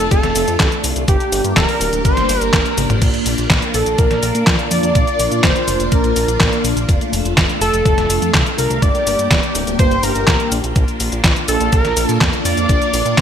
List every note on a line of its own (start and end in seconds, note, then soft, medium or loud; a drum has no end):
0.00 1.06 A3 medium
0.00 10.72 D4 medium
0.00 1.06 F4 medium
0.11 0.21 F1 loud
0.11 0.80 A4 loud
0.11 kick loud
0.11 closed hi-hat loud
0.11 cabasa soft
0.23 0.33 F1 medium
0.23 snare soft
0.23 closed hi-hat soft
0.23 cabasa soft
0.36 0.45 F1 loud
0.36 open hi-hat loud
0.36 cabasa medium
0.48 0.57 F2 medium
0.48 closed hi-hat soft
0.48 cabasa soft
0.60 0.69 C2 loud
0.60 kick loud
0.60 snare loud
0.60 clap medium
0.60 closed hi-hat medium
0.60 cabasa soft
0.72 closed hi-hat soft
0.72 cabasa soft
0.84 0.93 C2 medium
0.84 open hi-hat loud
0.84 cabasa medium
0.96 1.05 C2 medium
0.96 closed hi-hat soft
0.96 cabasa soft
1.08 1.17 G1 medium
1.08 6.85 A#3 medium
1.08 3.00 G4 medium
1.08 1.53 G4 medium
1.08 kick loud
1.08 closed hi-hat loud
1.08 cabasa soft
1.20 closed hi-hat soft
1.20 cabasa soft
1.32 1.42 G1 medium
1.32 open hi-hat loud
1.32 cabasa medium
1.45 1.54 G2 medium
1.45 closed hi-hat soft
1.45 cabasa soft
1.57 1.66 D1 loud
1.57 2.02 A#4 loud
1.57 kick loud
1.57 snare loud
1.57 clap loud
1.57 closed hi-hat loud
1.57 cabasa soft
1.69 open hi-hat medium
1.69 cabasa soft
1.81 1.90 D1 medium
1.81 open hi-hat loud
1.81 cabasa medium
1.93 2.02 D1 medium
1.93 closed hi-hat soft
1.93 cabasa soft
2.05 2.14 G1 loud
2.05 2.41 C5 loud
2.05 kick loud
2.05 closed hi-hat loud
2.05 cabasa soft
2.17 2.26 G1 medium
2.17 snare soft
2.17 closed hi-hat soft
2.17 cabasa soft
2.29 2.38 G1 loud
2.29 open hi-hat loud
2.29 cabasa medium
2.41 2.50 G1 medium
2.41 2.54 A#4 loud
2.41 closed hi-hat soft
2.41 cabasa soft
2.53 2.63 G1 loud
2.53 2.90 A#4 loud
2.53 kick loud
2.53 snare loud
2.53 clap loud
2.53 closed hi-hat medium
2.53 cabasa soft
2.66 closed hi-hat soft
2.66 cabasa soft
2.78 2.87 G1 medium
2.78 open hi-hat loud
2.78 high tom medium
2.78 cabasa medium
2.89 2.99 G1 medium
2.89 closed hi-hat soft
2.89 mid tom medium
2.89 cabasa soft
3.02 3.11 A#1 loud
3.02 8.79 F4 medium
3.02 kick loud
3.02 closed hi-hat medium
3.02 crash medium
3.02 cabasa soft
3.14 closed hi-hat soft
3.14 cabasa soft
3.26 3.35 A#1 medium
3.26 open hi-hat loud
3.26 cabasa medium
3.38 3.47 A#1 medium
3.38 closed hi-hat soft
3.38 cabasa soft
3.50 3.59 A#1 loud
3.50 kick loud
3.50 snare loud
3.50 clap loud
3.50 closed hi-hat medium
3.50 cabasa soft
3.62 closed hi-hat soft
3.62 cabasa soft
3.74 3.84 A#1 medium
3.74 4.00 A4 loud
3.74 open hi-hat loud
3.74 cabasa medium
3.86 3.96 A#1 medium
3.86 closed hi-hat soft
3.86 cabasa soft
3.98 4.08 A#1 loud
3.98 4.47 A#4 loud
3.98 kick loud
3.98 closed hi-hat medium
3.98 cabasa soft
4.11 4.20 A#1 medium
4.11 snare soft
4.11 closed hi-hat soft
4.11 cabasa soft
4.23 4.32 A#1 loud
4.23 open hi-hat loud
4.23 cabasa medium
4.35 4.44 A#2 medium
4.35 closed hi-hat soft
4.35 cabasa soft
4.47 4.56 F2 loud
4.47 kick loud
4.47 snare loud
4.47 clap loud
4.47 closed hi-hat loud
4.47 cabasa soft
4.59 closed hi-hat soft
4.59 cabasa soft
4.71 4.80 F2 loud
4.71 5.45 D5 loud
4.71 open hi-hat loud
4.71 cabasa medium
4.83 4.92 F2 medium
4.83 closed hi-hat soft
4.83 cabasa soft
4.95 5.04 A#1 loud
4.95 kick loud
4.95 closed hi-hat medium
4.95 cabasa soft
5.07 closed hi-hat soft
5.07 cabasa soft
5.19 5.29 A#1 medium
5.19 open hi-hat loud
5.19 cabasa medium
5.32 5.41 A#2 medium
5.32 closed hi-hat soft
5.32 cabasa soft
5.44 5.53 F1 loud
5.44 5.94 C5 loud
5.44 kick loud
5.44 snare loud
5.44 clap loud
5.44 closed hi-hat loud
5.44 cabasa soft
5.56 closed hi-hat soft
5.56 cabasa soft
5.68 5.77 F1 medium
5.68 open hi-hat loud
5.68 cabasa medium
5.80 5.89 F1 medium
5.80 closed hi-hat soft
5.80 cabasa soft
5.92 6.01 A#1 loud
5.92 6.65 A#4 medium
5.92 kick loud
5.92 closed hi-hat loud
5.92 cabasa soft
6.04 6.13 A#1 medium
6.04 closed hi-hat soft
6.04 cabasa soft
6.16 6.25 A#1 medium
6.16 open hi-hat loud
6.16 cabasa medium
6.28 6.37 A#1 medium
6.28 closed hi-hat soft
6.28 cabasa soft
6.40 6.50 A#1 loud
6.40 kick loud
6.40 snare loud
6.40 clap loud
6.40 closed hi-hat medium
6.40 cabasa soft
6.53 closed hi-hat soft
6.53 cabasa soft
6.64 6.74 A#1 medium
6.64 open hi-hat loud
6.64 cabasa medium
6.76 6.86 A#1 medium
6.76 closed hi-hat soft
6.76 cabasa soft
6.89 6.98 F1 loud
6.89 8.80 A3 medium
6.89 kick loud
6.89 closed hi-hat medium
6.89 cabasa soft
7.01 closed hi-hat soft
7.01 cabasa soft
7.13 7.22 F1 medium
7.13 open hi-hat loud
7.13 cabasa medium
7.25 7.34 F1 medium
7.25 closed hi-hat soft
7.25 cabasa soft
7.37 7.46 F1 loud
7.37 kick loud
7.37 snare loud
7.37 clap loud
7.37 closed hi-hat medium
7.37 cabasa soft
7.49 closed hi-hat soft
7.49 cabasa soft
7.61 7.71 F1 medium
7.61 8.30 A4 loud
7.61 open hi-hat loud
7.61 cabasa medium
7.73 7.83 F1 medium
7.73 closed hi-hat soft
7.73 cabasa soft
7.86 7.95 F1 loud
7.86 kick loud
7.86 closed hi-hat medium
7.86 cabasa soft
7.98 8.07 F1 medium
7.98 snare soft
7.98 closed hi-hat soft
7.98 cabasa soft
8.10 8.19 F1 loud
8.10 open hi-hat loud
8.10 cabasa medium
8.22 8.31 F2 medium
8.22 closed hi-hat soft
8.22 cabasa soft
8.34 8.43 C2 loud
8.34 kick loud
8.34 snare loud
8.34 clap loud
8.34 closed hi-hat medium
8.34 cabasa soft
8.46 closed hi-hat soft
8.46 cabasa soft
8.58 8.67 C2 medium
8.58 8.84 A#4 loud
8.58 open hi-hat loud
8.58 cabasa medium
8.70 8.80 C2 medium
8.70 closed hi-hat soft
8.70 cabasa soft
8.82 8.92 G1 loud
8.82 10.74 A#3 medium
8.82 10.74 G4 medium
8.82 9.55 D5 loud
8.82 kick loud
8.82 closed hi-hat medium
8.82 cabasa soft
8.95 closed hi-hat soft
8.95 cabasa soft
9.07 9.16 G1 medium
9.07 open hi-hat loud
9.07 cabasa medium
9.19 9.28 G2 medium
9.19 closed hi-hat soft
9.19 cabasa soft
9.31 9.40 D1 loud
9.31 kick loud
9.31 snare loud
9.31 clap loud
9.31 closed hi-hat medium
9.31 cabasa soft
9.43 closed hi-hat soft
9.43 cabasa soft
9.55 9.64 D1 medium
9.55 open hi-hat loud
9.55 cabasa medium
9.67 9.76 D1 medium
9.67 closed hi-hat soft
9.67 cabasa soft
9.79 9.88 G1 loud
9.79 10.05 C5 loud
9.79 kick loud
9.79 closed hi-hat medium
9.79 cabasa soft
9.91 10.00 G1 medium
9.91 closed hi-hat soft
9.91 cabasa soft
10.03 10.12 G1 loud
10.03 10.52 A#4 loud
10.03 open hi-hat loud
10.03 cabasa medium
10.15 10.25 G1 medium
10.15 closed hi-hat soft
10.15 cabasa soft
10.27 10.37 A#1 loud
10.27 kick loud
10.27 snare loud
10.27 clap loud
10.27 closed hi-hat medium
10.27 cabasa soft
10.40 closed hi-hat soft
10.40 cabasa soft
10.52 10.61 A#1 loud
10.52 open hi-hat loud
10.52 cabasa medium
10.64 10.73 A#1 medium
10.64 closed hi-hat soft
10.64 cabasa soft
10.76 10.85 A#1 loud
10.76 13.21 A#3 medium
10.76 13.21 D4 medium
10.76 13.21 F4 medium
10.76 kick loud
10.76 closed hi-hat medium
10.76 cabasa soft
10.88 closed hi-hat soft
10.88 cabasa soft
11.00 11.09 A#1 medium
11.00 open hi-hat loud
11.00 cabasa medium
11.12 11.21 A#1 medium
11.12 closed hi-hat soft
11.12 cabasa soft
11.24 11.33 A#1 loud
11.24 kick loud
11.24 snare loud
11.24 clap loud
11.24 closed hi-hat medium
11.24 cabasa soft
11.36 closed hi-hat soft
11.36 cabasa soft
11.48 11.58 A#1 loud
11.48 11.71 A4 loud
11.48 open hi-hat loud
11.48 cabasa medium
11.61 11.70 A#1 medium
11.61 closed hi-hat soft
11.61 cabasa soft
11.73 11.82 A#1 loud
11.73 12.07 A#4 loud
11.73 kick loud
11.73 closed hi-hat medium
11.73 cabasa soft
11.85 11.94 A#1 medium
11.85 snare soft
11.85 closed hi-hat soft
11.85 cabasa soft
11.97 12.06 A#1 loud
11.97 open hi-hat loud
11.97 cabasa medium
12.07 12.18 A#2 medium
12.07 12.18 A4 loud
12.07 closed hi-hat soft
12.07 cabasa soft
12.21 12.30 F2 loud
12.21 kick loud
12.21 snare loud
12.21 clap loud
12.21 closed hi-hat medium
12.21 cabasa soft
12.33 closed hi-hat soft
12.33 cabasa soft
12.45 12.54 F2 loud
12.45 13.20 D5 loud
12.45 open hi-hat loud
12.45 cabasa medium
12.57 12.67 F2 medium
12.57 closed hi-hat soft
12.57 cabasa soft
12.69 12.79 A#1 loud
12.69 kick loud
12.69 closed hi-hat medium
12.69 cabasa soft
12.82 closed hi-hat soft
12.82 cabasa soft
12.94 13.03 A#1 medium
12.94 open hi-hat loud
12.94 cabasa medium
13.06 13.15 A#2 medium
13.06 closed hi-hat soft
13.06 cabasa soft
13.18 13.21 F1 loud
13.18 kick loud
13.18 snare loud
13.18 clap loud
13.18 closed hi-hat loud
13.18 cabasa soft